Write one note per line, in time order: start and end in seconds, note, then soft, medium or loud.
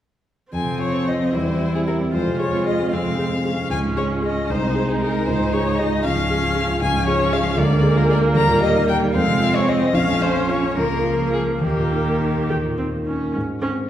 0.52 1.32 F2 soft
0.52 1.36 F3 soft
0.52 1.35 C4 soft
0.52 0.78 G#5 soft
0.64 0.87 C3 soft
0.79 1.01 F4 soft
0.79 1.09 C#5 soft
0.92 1.15 C4 soft
1.05 1.28 F4 soft
1.05 1.36 D#5 soft
1.20 1.34 C4 soft
1.33 2.10 E2 soft
1.33 2.15 G3 soft
1.33 2.13 E4 soft
1.33 1.74 C5 soft
1.46 1.68 E3 soft
1.60 1.81 G4 soft
1.73 1.95 C4 soft
1.73 1.80 G#4 soft
1.86 2.08 G4 soft
1.86 1.95 A#4 soft
2.00 2.13 C4 soft
2.13 2.90 F2 soft
2.13 3.70 G#3 soft
2.13 2.94 F4 soft
2.13 2.39 C5 soft
2.27 2.48 C3 soft
2.39 2.61 G#4 soft
2.39 2.66 C#5 soft
2.52 2.74 C4 soft
2.66 2.88 G#4 soft
2.66 2.92 D#5 soft
2.79 3.01 C4 soft
2.91 3.68 F2 soft
2.91 3.19 C4 soft
2.91 3.70 F5 soft
3.04 3.26 C3 soft
3.17 3.27 C4 soft
3.17 3.39 G#4 soft
3.31 3.53 C4 soft
3.44 4.51 C#4 soft
3.44 3.66 G#4 soft
3.58 3.72 C4 soft
3.70 4.47 C#2 soft
3.70 4.48 G#3 soft
3.70 3.79 G#5 medium
3.84 4.05 G#2 soft
3.97 4.18 G#4 soft
3.97 4.05 C#5 soft
4.09 4.31 F4 soft
4.22 4.44 G#4 soft
4.22 4.52 D#5 soft
4.35 4.49 F4 soft
4.49 5.24 C2 soft
4.49 6.05 G#3 soft
4.49 5.27 D#4 soft
4.49 4.90 C5 medium
4.62 4.83 C3 soft
4.75 4.96 G#4 soft
4.88 5.08 D#4 soft
4.88 5.00 G#4 soft
5.00 5.22 G#4 soft
5.00 5.27 A#4 medium
5.15 5.27 D#4 soft
5.26 6.03 C#2 soft
5.26 6.06 D#4 soft
5.26 5.54 C5 medium
5.40 5.60 G#2 soft
5.53 5.74 G#4 soft
5.53 5.80 C#5 medium
5.66 5.86 F4 soft
5.78 6.00 G#4 soft
5.78 6.04 D#5 medium
6.04 6.80 C#2 soft
6.04 6.81 F3 soft
6.04 6.81 C#4 soft
6.04 6.80 F5 medium
6.16 6.37 G#2 soft
6.30 6.51 G#4 soft
6.42 6.63 F4 soft
6.55 6.76 G#4 soft
6.69 6.82 F4 soft
6.82 7.57 C#2 soft
6.82 7.60 F3 soft
6.82 7.60 C#4 soft
6.82 7.07 G#5 medium
6.94 7.15 G#2 soft
7.07 7.28 G#4 soft
7.07 7.34 C#5 medium
7.20 7.41 F4 soft
7.33 7.53 G#4 soft
7.33 7.60 F5 medium
7.44 7.58 F4 soft
7.56 8.33 D2 soft
7.56 8.35 G#3 soft
7.56 9.16 A#3 medium
7.56 7.98 D5 medium
7.68 7.91 D3 soft
7.82 8.04 G#4 soft
7.96 8.17 F4 soft
7.96 8.10 A#4 medium
8.08 8.30 G#4 soft
8.08 8.18 D5 medium
8.22 8.35 F4 soft
8.35 9.11 D#2 soft
8.35 9.16 G3 soft
8.35 8.61 A#5 medium
8.48 8.69 A#2 soft
8.61 8.82 G4 soft
8.61 8.88 D#5 medium
8.74 8.96 D#4 soft
8.88 9.09 G4 soft
8.88 8.97 G5 medium
9.01 9.14 D#4 soft
9.14 9.92 F2 soft
9.14 9.94 G#3 medium
9.14 9.94 C4 soft
9.14 9.56 F5 medium
9.27 9.49 C3 soft
9.40 9.62 F4 soft
9.54 9.76 C4 soft
9.54 9.70 C#5 medium
9.68 9.90 F4 soft
9.68 9.96 D#5 medium
9.82 9.95 C4 soft
9.94 10.74 A#1 medium
9.94 10.73 F3 medium
9.94 10.78 C#4 medium
9.94 10.23 F5 medium
10.08 10.30 F2 soft
10.22 10.44 F4 soft
10.22 10.50 C5 medium
10.36 10.58 C#4 soft
10.49 10.72 F4 soft
10.49 10.76 C#5 medium
10.62 10.77 C#4 soft
10.76 11.60 C#2 soft
10.76 11.64 F3 soft
10.76 11.62 A#3 soft
10.76 11.33 A#4 medium
10.91 11.14 C#3 soft
11.04 11.27 F4 soft
11.18 11.42 A#3 soft
11.32 11.56 F4 soft
11.32 11.41 G#4 medium
11.48 11.63 A#3 soft
11.61 12.49 D#2 soft
11.61 13.14 D#3 soft
11.61 12.43 A#3 soft
11.61 12.48 G4 soft
11.77 12.01 A#2 soft
11.92 12.16 D#4 soft
12.06 12.30 A#3 soft
12.21 12.44 D#4 soft
12.35 12.58 A#3 soft
12.49 13.32 D#2 soft
12.49 12.57 G4 soft
12.65 12.87 A#2 soft
12.78 12.86 C4 soft
12.78 13.01 D#4 soft
12.93 13.16 A#3 soft
13.05 13.34 C#4 soft
13.05 13.29 D#4 soft
13.21 13.35 A#3 soft
13.35 13.89 G#2 soft
13.62 13.89 C4 soft
13.62 13.70 C#4 soft